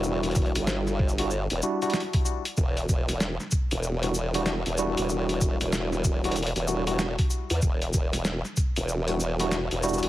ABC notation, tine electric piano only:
X:1
M:4/4
L:1/16
Q:"Swing 16ths" 1/4=95
K:Em
V:1 name="Tine electric piano"
[G,DEF]6- [G,DEF] [G,DEF] z2 [G,DEF] [G,DEF] z4 | z8 z [G,DEF] z [G,DEF] z2 [G,DEF]2- | [G,DEF]6- [G,DEF] [G,DEF] z2 [G,DEF] [G,DEF] z4 | z8 z [G,DEF] z [G,DEF] z2 [G,DEF]2 |]